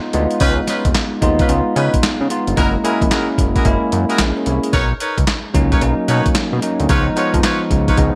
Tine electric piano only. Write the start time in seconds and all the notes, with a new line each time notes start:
Already playing: G#3 B3 D#4 F4
0.13 G#3 B3 D#4 F4
1.21 G#3 B3 D#4 F4
1.48 G#3 B3 D#4 F4
2.30 G#3 B3 D#4 F4
2.56 G#3 A#3 C#4 E4
2.84 G#3 A#3 C#4 E4
3.65 G#3 A#3 C#4 E4
4.19 G#4
4.37 C#4 A#4
4.46 E4 C#5
4.64 G#4
5.54 F#3 A#3 C#4 D#4
5.81 F#3 A#3 C#4 D#4
6.62 F#3 A#3 C#4 D#4
6.89 F3 G#3 B3 D#4
7.16 F3 G#3 B3 D#4
7.97 F3 G#3 B3 D#4